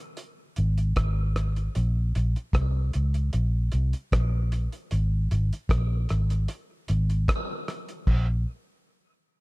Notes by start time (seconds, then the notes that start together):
0.17 closed hi-hat
0.56 G#1, closed hi-hat
0.78 closed hi-hat
0.96 G#1, kick, cross-stick, closed hi-hat
1.36 cross-stick, closed hi-hat
1.56 closed hi-hat
1.75 A#1, closed hi-hat
2.15 A#1, closed hi-hat
2.36 closed hi-hat
2.53 C2, kick, cross-stick, closed hi-hat
2.93 C#2, closed hi-hat
3.14 closed hi-hat
3.33 A#1, closed hi-hat
3.72 C2, closed hi-hat
3.93 closed hi-hat
4.12 A#1, kick, cross-stick, closed hi-hat
4.52 closed hi-hat
4.72 closed hi-hat
4.91 G#1, closed hi-hat
5.31 G#1, closed hi-hat
5.53 closed hi-hat
5.69 A#1, kick, cross-stick, closed hi-hat
6.09 G#1, cross-stick, closed hi-hat
6.30 closed hi-hat
6.48 closed hi-hat
6.88 G#1, closed hi-hat
7.10 closed hi-hat
7.28 kick, cross-stick, closed hi-hat
7.68 cross-stick, closed hi-hat
7.89 closed hi-hat
8.07 A#1, kick, crash